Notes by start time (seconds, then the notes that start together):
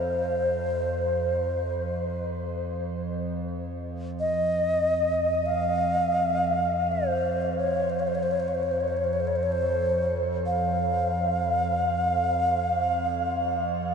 Already playing: F2 C5
4.20 D#5
4.26 F2
5.46 F5
6.92 C5
7.58 C#5
7.90 C5
8.00 C#5
8.07 C5
8.15 C#5
8.23 C5
8.31 C#5
8.40 C5
8.48 C#5
8.55 C5
8.63 C#5
8.71 C5
8.81 C#5
8.88 C5
8.97 C#5
9.04 C5
9.13 C#5
9.20 C5
9.27 C#5
9.36 C5
9.43 C#5
9.52 C5
10.46 F5